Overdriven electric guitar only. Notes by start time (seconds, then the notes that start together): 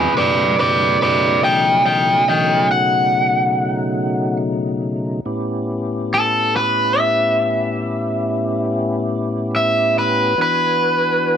Already playing: G#4 B4
0.17 B4 D5
0.59 B4 D5
1.02 B4 D5
1.44 D#5 G5
1.86 D#5 G5
2.28 D#5 G5
2.71 F#5
6.14 A4
6.56 B4
6.99 E5
9.56 E5
9.99 B4
10.42 B4